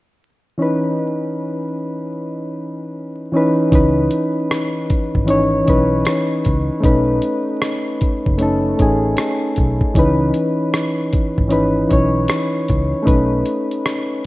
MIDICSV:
0, 0, Header, 1, 4, 480
1, 0, Start_track
1, 0, Key_signature, 4, "minor"
1, 0, Tempo, 779221
1, 373, Time_signature, 4, 2, 24, 8
1, 8784, End_track
2, 0, Start_track
2, 0, Title_t, "Synth keys"
2, 0, Program_c, 0, 88
2, 356, Note_on_c, 0, 52, 74
2, 363, Note_on_c, 0, 61, 68
2, 375, Note_on_c, 0, 63, 60
2, 384, Note_on_c, 0, 71, 75
2, 487, Control_c, 0, 64, 127
2, 1086, Note_off_c, 0, 52, 0
2, 1089, Note_off_c, 0, 61, 0
2, 1095, Note_off_c, 0, 63, 0
2, 1100, Note_off_c, 0, 71, 0
2, 2045, Note_on_c, 0, 52, 89
2, 2055, Note_on_c, 0, 61, 83
2, 2065, Note_on_c, 0, 63, 77
2, 2073, Note_on_c, 0, 71, 90
2, 2248, Note_off_c, 0, 52, 0
2, 2253, Note_off_c, 0, 61, 0
2, 2258, Note_off_c, 0, 63, 0
2, 2262, Note_off_c, 0, 71, 0
2, 2279, Note_on_c, 0, 52, 73
2, 2289, Note_on_c, 0, 61, 68
2, 2299, Note_on_c, 0, 63, 71
2, 2302, Control_c, 0, 64, 0
2, 2311, Note_on_c, 0, 71, 89
2, 2408, Control_c, 0, 64, 127
2, 3007, Note_off_c, 0, 52, 0
2, 3012, Note_off_c, 0, 61, 0
2, 3017, Note_off_c, 0, 63, 0
2, 3023, Note_off_c, 0, 71, 0
2, 3238, Note_on_c, 0, 52, 75
2, 3248, Note_on_c, 0, 61, 65
2, 3256, Note_on_c, 0, 63, 66
2, 3267, Note_on_c, 0, 73, 89
2, 3445, Note_off_c, 0, 52, 0
2, 3449, Note_off_c, 0, 61, 0
2, 3453, Note_off_c, 0, 63, 0
2, 3459, Note_off_c, 0, 73, 0
2, 3479, Note_on_c, 0, 52, 81
2, 3488, Note_on_c, 0, 61, 70
2, 3498, Note_on_c, 0, 63, 67
2, 3508, Note_on_c, 0, 71, 85
2, 4046, Note_off_c, 0, 52, 0
2, 4050, Note_off_c, 0, 61, 0
2, 4055, Note_off_c, 0, 63, 0
2, 4060, Note_off_c, 0, 71, 0
2, 4191, Note_on_c, 0, 57, 75
2, 4201, Note_on_c, 0, 61, 68
2, 4210, Note_on_c, 0, 63, 79
2, 4222, Control_c, 0, 64, 0
2, 4222, Note_on_c, 0, 71, 86
2, 4329, Control_c, 0, 64, 127
2, 4923, Note_off_c, 0, 57, 0
2, 4928, Note_off_c, 0, 61, 0
2, 4933, Note_off_c, 0, 63, 0
2, 4938, Note_off_c, 0, 71, 0
2, 5161, Note_on_c, 0, 57, 78
2, 5171, Note_on_c, 0, 61, 67
2, 5181, Note_on_c, 0, 63, 65
2, 5190, Note_on_c, 0, 69, 84
2, 5366, Note_off_c, 0, 57, 0
2, 5371, Note_off_c, 0, 61, 0
2, 5376, Note_off_c, 0, 63, 0
2, 5380, Note_off_c, 0, 69, 0
2, 5404, Note_on_c, 0, 57, 78
2, 5414, Note_on_c, 0, 61, 74
2, 5422, Note_on_c, 0, 63, 67
2, 5433, Note_on_c, 0, 68, 85
2, 5968, Note_off_c, 0, 57, 0
2, 5973, Note_off_c, 0, 61, 0
2, 5977, Note_off_c, 0, 63, 0
2, 5983, Note_off_c, 0, 68, 0
2, 6125, Note_on_c, 0, 52, 83
2, 6135, Note_on_c, 0, 61, 70
2, 6141, Control_c, 0, 64, 0
2, 6143, Note_on_c, 0, 63, 72
2, 6153, Note_on_c, 0, 71, 93
2, 6234, Control_c, 0, 64, 127
2, 6850, Note_off_c, 0, 52, 0
2, 6855, Note_off_c, 0, 61, 0
2, 6859, Note_off_c, 0, 63, 0
2, 6864, Note_off_c, 0, 71, 0
2, 7069, Note_on_c, 0, 52, 73
2, 7078, Note_on_c, 0, 61, 74
2, 7089, Note_on_c, 0, 63, 68
2, 7097, Note_on_c, 0, 71, 87
2, 7280, Note_off_c, 0, 52, 0
2, 7285, Note_off_c, 0, 61, 0
2, 7290, Note_off_c, 0, 63, 0
2, 7294, Note_off_c, 0, 71, 0
2, 7315, Note_on_c, 0, 52, 76
2, 7326, Note_on_c, 0, 61, 68
2, 7334, Note_on_c, 0, 63, 59
2, 7347, Note_on_c, 0, 73, 82
2, 7884, Note_off_c, 0, 52, 0
2, 7889, Note_off_c, 0, 61, 0
2, 7893, Note_off_c, 0, 63, 0
2, 7900, Note_off_c, 0, 73, 0
2, 8025, Note_on_c, 0, 57, 76
2, 8033, Note_on_c, 0, 61, 73
2, 8042, Note_on_c, 0, 63, 74
2, 8053, Note_on_c, 0, 71, 84
2, 8062, Control_c, 0, 64, 0
2, 8163, Control_c, 0, 64, 127
2, 8760, Note_off_c, 0, 57, 0
2, 8764, Note_off_c, 0, 61, 0
2, 8769, Note_off_c, 0, 63, 0
2, 8774, Note_off_c, 0, 71, 0
2, 8784, End_track
3, 0, Start_track
3, 0, Title_t, "Fingered electric bass"
3, 0, Program_c, 1, 33
3, 2295, Note_on_c, 1, 37, 109
3, 2509, Note_off_c, 1, 37, 0
3, 3174, Note_on_c, 1, 32, 86
3, 3461, Note_off_c, 1, 32, 0
3, 3503, Note_on_c, 1, 35, 81
3, 3713, Note_off_c, 1, 35, 0
3, 3982, Note_on_c, 1, 37, 89
3, 4119, Note_off_c, 1, 37, 0
3, 4213, Note_on_c, 1, 35, 107
3, 4428, Note_off_c, 1, 35, 0
3, 5094, Note_on_c, 1, 30, 84
3, 5380, Note_off_c, 1, 30, 0
3, 5420, Note_on_c, 1, 33, 85
3, 5631, Note_off_c, 1, 33, 0
3, 5903, Note_on_c, 1, 35, 92
3, 6039, Note_off_c, 1, 35, 0
3, 6133, Note_on_c, 1, 37, 112
3, 6348, Note_off_c, 1, 37, 0
3, 7013, Note_on_c, 1, 32, 81
3, 7300, Note_off_c, 1, 32, 0
3, 7341, Note_on_c, 1, 35, 86
3, 7552, Note_off_c, 1, 35, 0
3, 7822, Note_on_c, 1, 37, 98
3, 7959, Note_off_c, 1, 37, 0
3, 8053, Note_on_c, 1, 35, 101
3, 8268, Note_off_c, 1, 35, 0
3, 8784, End_track
4, 0, Start_track
4, 0, Title_t, "Drums"
4, 2292, Note_on_c, 9, 36, 103
4, 2297, Note_on_c, 9, 42, 63
4, 2354, Note_off_c, 9, 36, 0
4, 2359, Note_off_c, 9, 42, 0
4, 2530, Note_on_c, 9, 42, 58
4, 2591, Note_off_c, 9, 42, 0
4, 2779, Note_on_c, 9, 37, 125
4, 2785, Note_on_c, 9, 42, 77
4, 2841, Note_off_c, 9, 37, 0
4, 2847, Note_off_c, 9, 42, 0
4, 3017, Note_on_c, 9, 42, 53
4, 3020, Note_on_c, 9, 36, 93
4, 3079, Note_off_c, 9, 42, 0
4, 3082, Note_off_c, 9, 36, 0
4, 3172, Note_on_c, 9, 36, 80
4, 3233, Note_off_c, 9, 36, 0
4, 3250, Note_on_c, 9, 42, 77
4, 3312, Note_off_c, 9, 42, 0
4, 3496, Note_on_c, 9, 42, 59
4, 3499, Note_on_c, 9, 36, 85
4, 3558, Note_off_c, 9, 42, 0
4, 3561, Note_off_c, 9, 36, 0
4, 3728, Note_on_c, 9, 42, 90
4, 3737, Note_on_c, 9, 37, 106
4, 3790, Note_off_c, 9, 42, 0
4, 3798, Note_off_c, 9, 37, 0
4, 3972, Note_on_c, 9, 42, 64
4, 3981, Note_on_c, 9, 36, 81
4, 4033, Note_off_c, 9, 42, 0
4, 4042, Note_off_c, 9, 36, 0
4, 4211, Note_on_c, 9, 36, 114
4, 4215, Note_on_c, 9, 42, 63
4, 4272, Note_off_c, 9, 36, 0
4, 4276, Note_off_c, 9, 42, 0
4, 4446, Note_on_c, 9, 42, 60
4, 4508, Note_off_c, 9, 42, 0
4, 4692, Note_on_c, 9, 37, 110
4, 4698, Note_on_c, 9, 42, 76
4, 4754, Note_off_c, 9, 37, 0
4, 4760, Note_off_c, 9, 42, 0
4, 4933, Note_on_c, 9, 42, 61
4, 4938, Note_on_c, 9, 36, 90
4, 4995, Note_off_c, 9, 42, 0
4, 5000, Note_off_c, 9, 36, 0
4, 5090, Note_on_c, 9, 36, 85
4, 5152, Note_off_c, 9, 36, 0
4, 5166, Note_on_c, 9, 42, 77
4, 5228, Note_off_c, 9, 42, 0
4, 5414, Note_on_c, 9, 42, 61
4, 5419, Note_on_c, 9, 36, 83
4, 5476, Note_off_c, 9, 42, 0
4, 5480, Note_off_c, 9, 36, 0
4, 5647, Note_on_c, 9, 42, 82
4, 5656, Note_on_c, 9, 37, 97
4, 5709, Note_off_c, 9, 42, 0
4, 5717, Note_off_c, 9, 37, 0
4, 5889, Note_on_c, 9, 42, 54
4, 5900, Note_on_c, 9, 36, 82
4, 5951, Note_off_c, 9, 42, 0
4, 5962, Note_off_c, 9, 36, 0
4, 6043, Note_on_c, 9, 36, 74
4, 6105, Note_off_c, 9, 36, 0
4, 6131, Note_on_c, 9, 36, 103
4, 6135, Note_on_c, 9, 42, 67
4, 6192, Note_off_c, 9, 36, 0
4, 6197, Note_off_c, 9, 42, 0
4, 6369, Note_on_c, 9, 42, 60
4, 6430, Note_off_c, 9, 42, 0
4, 6614, Note_on_c, 9, 37, 121
4, 6620, Note_on_c, 9, 42, 76
4, 6676, Note_off_c, 9, 37, 0
4, 6682, Note_off_c, 9, 42, 0
4, 6853, Note_on_c, 9, 42, 54
4, 6858, Note_on_c, 9, 36, 96
4, 6915, Note_off_c, 9, 42, 0
4, 6920, Note_off_c, 9, 36, 0
4, 7010, Note_on_c, 9, 36, 78
4, 7071, Note_off_c, 9, 36, 0
4, 7087, Note_on_c, 9, 42, 75
4, 7149, Note_off_c, 9, 42, 0
4, 7334, Note_on_c, 9, 42, 63
4, 7338, Note_on_c, 9, 36, 79
4, 7395, Note_off_c, 9, 42, 0
4, 7400, Note_off_c, 9, 36, 0
4, 7565, Note_on_c, 9, 42, 87
4, 7574, Note_on_c, 9, 37, 105
4, 7627, Note_off_c, 9, 42, 0
4, 7636, Note_off_c, 9, 37, 0
4, 7813, Note_on_c, 9, 42, 58
4, 7821, Note_on_c, 9, 36, 84
4, 7875, Note_off_c, 9, 42, 0
4, 7882, Note_off_c, 9, 36, 0
4, 8051, Note_on_c, 9, 36, 109
4, 8056, Note_on_c, 9, 42, 57
4, 8113, Note_off_c, 9, 36, 0
4, 8118, Note_off_c, 9, 42, 0
4, 8289, Note_on_c, 9, 42, 64
4, 8351, Note_off_c, 9, 42, 0
4, 8447, Note_on_c, 9, 42, 48
4, 8509, Note_off_c, 9, 42, 0
4, 8536, Note_on_c, 9, 37, 118
4, 8542, Note_on_c, 9, 42, 79
4, 8598, Note_off_c, 9, 37, 0
4, 8604, Note_off_c, 9, 42, 0
4, 8784, End_track
0, 0, End_of_file